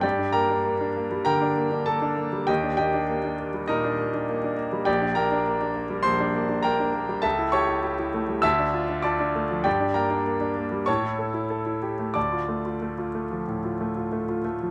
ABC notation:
X:1
M:4/4
L:1/16
Q:1/4=99
K:Eblyd
V:1 name="Grand piano"
[Gdg]2 [Bgb]6 [Bgb]4 [Aa]4 | [Geg]2 [Geg]6 [EBe]6 z2 | [K:Dm] [Gdg]2 [Bgb]6 [cc']4 [Bgb]4 | [Aea]2 [^ca^c']6 [eae']4 [dad']4 |
[Gdg]2 [Bgb]6 [^ca^c']8 | [dad']12- [dad']2 z2 |]
V:2 name="Grand piano"
G,, D B, D B, D B, G, D, D B, D B, D B, G, | E,, D B, D B, D B, G, B,, D B, D B, D B, G, | [K:Dm] B,,, D B, D B, D B, G, B,,, D B, D B, D B, G, | ^C,, E G E G E A, G, D,, D F D F D A, F, |
G,, D B, D B, D B, G, A,, E A E A E G A, | D,, F A, F A, F A, F, A,, F A, F A, F A, F, |]